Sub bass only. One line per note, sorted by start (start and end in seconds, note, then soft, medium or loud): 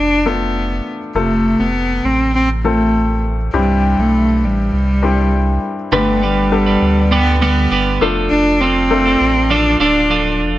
0.00 0.81 F1 medium
1.15 1.57 F1 loud
1.60 2.01 F1 medium
2.05 3.50 A1 medium
3.54 3.95 C2 loud
3.98 4.45 B1 medium
4.43 4.71 A1 medium
4.73 5.59 C2 medium
5.92 6.78 G1 loud
6.82 7.68 D2 medium
7.71 7.99 G1 medium
8.01 8.29 F1 medium
8.31 9.17 F1 loud
9.21 9.76 A1 medium
9.80 10.41 D1 medium
10.40 10.59 E1 medium